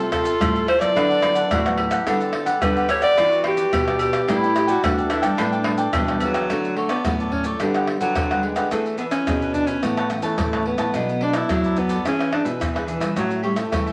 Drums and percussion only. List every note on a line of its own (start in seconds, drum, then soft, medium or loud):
0.00 pandeiro soft
0.00 maracas soft
0.12 pandeiro medium
0.12 tamborim medium
0.12 maracas medium
0.12 surdo medium
0.25 pandeiro medium
0.25 maracas medium
0.41 pandeiro medium
0.41 tamborim medium
0.41 high agogo medium
0.41 maracas medium
0.41 surdo loud
0.55 pandeiro soft
0.55 maracas soft
0.68 pandeiro medium
0.68 tamborim medium
0.68 high agogo medium
0.81 pandeiro medium
0.81 tamborim medium
0.81 maracas medium
0.97 pandeiro medium
0.97 tamborim medium
0.97 low agogo medium
0.97 maracas medium
0.97 surdo medium
1.11 pandeiro soft
1.11 maracas soft
1.22 pandeiro medium
1.22 tamborim medium
1.22 low agogo medium
1.22 maracas medium
1.35 pandeiro medium
1.35 maracas medium
1.51 pandeiro medium
1.51 tamborim medium
1.51 high agogo medium
1.51 maracas medium
1.51 surdo loud
1.66 pandeiro soft
1.66 tamborim medium
1.66 maracas soft
1.78 pandeiro medium
1.78 high agogo medium
1.91 pandeiro medium
1.91 tamborim medium
1.91 maracas medium
2.07 pandeiro medium
2.07 tamborim medium
2.07 maracas medium
2.07 surdo medium
2.21 pandeiro soft
2.21 maracas soft
2.33 pandeiro medium
2.33 tamborim medium
2.46 pandeiro medium
2.46 maracas medium
2.62 pandeiro medium
2.62 tamborim medium
2.62 high agogo medium
2.62 maracas medium
2.62 surdo loud
2.77 pandeiro soft
2.77 maracas soft
2.89 pandeiro medium
2.89 tamborim medium
2.89 high agogo medium
2.89 maracas medium
3.02 pandeiro medium
3.02 tamborim medium
3.02 maracas medium
3.18 pandeiro medium
3.18 tamborim medium
3.18 low agogo medium
3.18 maracas medium
3.18 surdo medium
3.32 pandeiro soft
3.32 maracas soft
3.44 pandeiro medium
3.44 tamborim medium
3.44 low agogo medium
3.57 pandeiro medium
3.57 maracas medium
3.73 pandeiro medium
3.73 tamborim medium
3.73 high agogo medium
3.73 maracas medium
3.73 surdo loud
3.88 pandeiro soft
3.88 tamborim medium
3.88 maracas soft
3.99 pandeiro medium
3.99 high agogo medium
3.99 maracas medium
4.13 pandeiro medium
4.13 tamborim medium
4.13 maracas medium
4.28 pandeiro medium
4.28 tamborim medium
4.28 maracas medium
4.28 surdo medium
4.43 pandeiro soft
4.43 maracas soft
4.56 pandeiro medium
4.56 tamborim medium
4.56 maracas medium
4.68 pandeiro medium
4.68 maracas medium
4.84 pandeiro medium
4.84 tamborim medium
4.84 high agogo medium
4.84 maracas medium
4.84 surdo loud
4.98 pandeiro soft
4.98 maracas soft
5.10 pandeiro medium
5.10 tamborim medium
5.10 high agogo medium
5.10 maracas medium
5.23 pandeiro medium
5.23 tamborim medium
5.23 maracas medium
5.38 pandeiro medium
5.38 tamborim medium
5.38 low agogo medium
5.38 maracas medium
5.38 surdo medium
5.52 pandeiro soft
5.52 maracas soft
5.64 pandeiro medium
5.64 tamborim medium
5.64 low agogo medium
5.78 pandeiro medium
5.78 maracas medium
5.93 pandeiro medium
5.93 tamborim medium
5.93 high agogo medium
5.93 maracas medium
5.93 surdo loud
6.08 pandeiro soft
6.08 tamborim medium
6.08 maracas soft
6.20 pandeiro medium
6.20 high agogo medium
6.20 maracas medium
6.34 pandeiro medium
6.34 tamborim medium
6.34 maracas medium
6.50 pandeiro medium
6.50 tamborim medium
6.50 maracas medium
6.50 surdo medium
6.64 pandeiro soft
6.64 maracas soft
6.76 pandeiro medium
6.89 pandeiro medium
6.89 tamborim medium
6.89 maracas medium
7.05 pandeiro medium
7.05 tamborim medium
7.05 maracas medium
7.05 surdo loud
7.20 pandeiro soft
7.20 maracas soft
7.32 pandeiro medium
7.32 surdo medium
7.44 pandeiro medium
7.44 maracas medium
7.60 pandeiro medium
7.60 tamborim medium
7.60 maracas medium
7.60 surdo medium
7.74 pandeiro soft
7.74 tamborim medium
7.74 maracas soft
7.87 pandeiro medium
7.87 tamborim medium
8.01 pandeiro medium
8.01 maracas medium
8.15 pandeiro medium
8.15 tamborim medium
8.15 maracas medium
8.15 surdo loud
8.31 pandeiro soft
8.31 tamborim medium
8.31 maracas soft
8.43 pandeiro medium
8.56 pandeiro medium
8.56 tamborim medium
8.56 maracas medium
8.71 pandeiro medium
8.71 tamborim medium
8.71 maracas medium
8.71 surdo soft
8.86 pandeiro soft
8.86 maracas soft
8.98 pandeiro medium
8.98 maracas medium
9.11 pandeiro medium
9.11 tamborim medium
9.11 maracas medium
9.27 pandeiro medium
9.27 tamborim medium
9.27 maracas medium
9.27 surdo loud
9.42 pandeiro soft
9.42 maracas soft
9.54 pandeiro medium
9.54 maracas medium
9.54 surdo medium
9.67 pandeiro medium
9.67 maracas medium
9.83 pandeiro medium
9.83 tamborim medium
9.83 maracas medium
9.83 surdo medium
9.97 pandeiro soft
9.97 tamborim medium
9.97 maracas soft
10.10 pandeiro medium
10.10 tamborim medium
10.10 maracas medium
10.22 pandeiro medium
10.22 maracas medium
10.38 pandeiro medium
10.38 tamborim medium
10.38 maracas medium
10.38 surdo loud
10.53 pandeiro soft
10.53 tamborim medium
10.53 maracas soft
10.66 pandeiro medium
10.78 pandeiro medium
10.78 tamborim medium
10.78 maracas medium
10.94 pandeiro medium
10.94 tamborim medium
10.94 maracas medium
10.94 surdo soft
11.09 pandeiro soft
11.09 maracas soft
11.21 pandeiro medium
11.33 pandeiro medium
11.33 tamborim medium
11.33 maracas medium
11.49 pandeiro medium
11.49 tamborim medium
11.49 maracas medium
11.49 surdo loud
11.64 pandeiro soft
11.64 maracas soft
11.76 pandeiro medium
11.76 maracas medium
11.76 surdo medium
11.89 pandeiro medium
11.89 maracas medium
12.05 pandeiro medium
12.05 tamborim medium
12.05 maracas medium
12.05 surdo medium
12.21 pandeiro soft
12.21 tamborim medium
12.21 maracas soft
12.33 pandeiro medium
12.33 tamborim medium
12.46 pandeiro medium
12.46 maracas medium
12.61 pandeiro medium
12.61 tamborim medium
12.61 maracas medium
12.61 surdo medium
12.76 pandeiro soft
12.76 tamborim medium
12.76 maracas soft
12.88 pandeiro medium
12.88 maracas medium
13.01 pandeiro medium
13.01 tamborim medium
13.01 maracas medium
13.16 pandeiro medium
13.16 tamborim medium
13.16 maracas medium
13.16 surdo medium
13.31 pandeiro soft
13.31 maracas soft
13.43 pandeiro medium
13.56 pandeiro medium
13.56 tamborim medium
13.56 maracas medium
13.72 pandeiro medium
13.72 tamborim medium
13.72 maracas medium
13.72 surdo loud
13.87 pandeiro soft
13.87 maracas soft